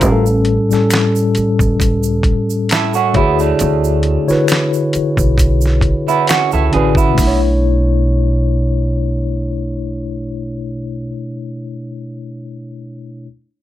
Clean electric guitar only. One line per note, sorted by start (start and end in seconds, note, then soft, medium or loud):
0.00 0.25 F4 medium
0.00 0.24 A#4 medium
2.71 2.94 E4 medium
2.71 2.94 A4 medium
2.95 3.15 C#4 medium
2.95 3.15 F#4 medium
3.16 3.39 B3 medium
3.16 3.38 E4 medium
3.40 4.70 A3 medium
3.40 4.70 D4 medium
6.08 6.28 B3 medium
6.08 6.28 E4 medium
6.29 6.52 C#4 medium
6.29 6.52 F#4 medium
6.53 6.73 E4 medium
6.53 6.73 A4 medium
6.74 6.97 D4 medium
6.74 6.96 G#4 medium
6.97 7.40 B3 medium
6.97 7.40 E4 medium